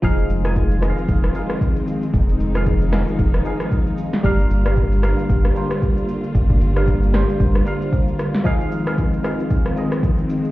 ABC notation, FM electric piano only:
X:1
M:4/4
L:1/16
Q:"Swing 16ths" 1/4=114
K:Fdor
V:1 name="FM electric piano"
[F,EAf]2 z [F,EAa]2 z [F,EAef]3 z [F,EAf]6 | z3 [F,EAf]2 z [F,EAf]3 z [F,EAf]4- [F,EAf] z | [G,DBf]2 z [G,DBf]2 z [G,DBf]3 z [G,DBc]6 | z3 [G,DBf]2 z [G,DBc]3 z [G,DBf]4- [G,DBf] z |
[F,EAf]2 z [F,EAf]2 z [F,EAf]3 z [F,EAe]6 |]